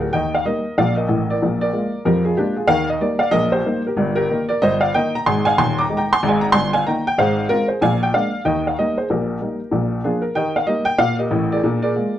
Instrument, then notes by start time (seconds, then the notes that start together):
upright piano
0.01 G4 A#4
0.13 D#2 D#3 D#5 G5
0.35 F5
0.45 G3 A#3 D#4 A#4 D#5
0.78 A#1 A#2 D5 F5
0.96 A#4 D#5
1.08 A1 A2
1.30 A#4 D5
1.42 A#1 A#2
1.61 A#4 D5
1.73 G#3 A#3 F4
2.05 F2 F3 G4 A#4
2.25 F4 G#4
2.37 G#3 A#3 D4 F4 G4
2.56 F4 G#4
2.67 D#2 D#3 A#4 F5
2.89 D#5
3.01 G3 A#3 D#4 A#4 D5
3.19 D5 F5
3.31 A#1 A#2 A#4 D#5
3.52 G4 C5
3.65 G3 A#3 D#4
3.87 G4 A#4
3.97 G1 G2
4.15 G4 A#4
4.30 D#3 A#3 D#4
4.49 A#4 D5
4.62 G1 G2 C5 D#5
4.81 D5 F5
4.94 D#3 A#3 D#4 D#5 G5
5.15 A#5
5.26 G#1 G#2 G#5 C6
5.45 F5 G#5
5.58 D#1 D#2 G#5 C6
5.78 A#5 D6
5.90 D#3 G#3 D#4
5.97 G5 A#5
6.13 G#5 C6
6.23 G#1 G#2
6.28 F5 G#5
6.41 A#5
6.52 G1 G2 G#5 C6
6.73 F5 G#5
6.87 D#3 A#3 D#4 G5 A#5
7.07 G5
7.18 G#1 G#2 C5 F5
7.49 G#3 C4 F4 A#4
7.68 G#4 C5
7.81 A#1 A#2 F5 G#5
8.03 G5
8.14 G#3 A#3 D4 D5 F5
8.45 D#2 D#3 D#5 G5
8.67 F5
8.79 G3 A#3 D#4 A#4 D#5
8.98 G#4 C5
9.10 A#1 A#2 G4 A#4
9.41 G3 A#3 D#4
9.71 A#1 A#2
10.04 F3 A#3 D4 F4 G#4
10.22 A#4
10.35 D#3 G4 A#4 D#5 G5
10.56 F5
10.67 G3 A#3 D#4 G4 A#4 D#5
10.85 G5
10.98 A#2 F5
11.19 G4 A#4 D#5
11.31 A1 A2
11.52 G#4 A#4 D5
11.64 A#2 D4
11.82 G#4 A#4 D5
11.96 G#3 A#3 F4